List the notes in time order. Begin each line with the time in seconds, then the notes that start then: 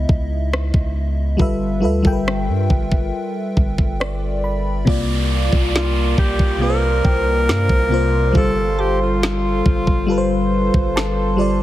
Already playing: C#3 B3 D#4 E4 D#5 E5
0.09 C#2, kick
0.53 cross-stick
0.74 C#2, kick
1.37 G1 G3 F4 A4 B4, kick
1.42 E5
1.80 D2 G3 F4 A4 B4
1.85 E5
2.02 G1 G3 F4 A4 A#4, kick
2.07 G5
2.12 B4
2.28 cross-stick
2.49 G2
2.70 G1, kick
2.92 kick
3.57 G1, kick
3.78 kick
4.00 D5, cross-stick
4.44 B5
4.85 C2 C3 A#3 F4 A#4 D5 F5 D6, kick, downlifter
4.89 D5
5.53 C2, kick
5.75 F4, snare
6.18 C2 G4, kick
6.39 kick
6.58 C3 A#3 F4 A#4
6.63 B4
6.70 C5
7.05 C2 G5, kick
7.48 G2, snare
7.69 C2, kick
7.89 C3 A#3 F4
7.94 C5
8.32 G1 G3 F4 A4 C6, kick
8.36 A4 C5
8.79 G4 A5
9.02 F4
9.23 snare
9.66 G1, kick
9.87 kick
10.07 G3 F4 A4
10.11 B4
10.18 C5
10.74 G1, kick
10.96 A5, snare
11.37 G3 F4 A4 D5
11.41 D5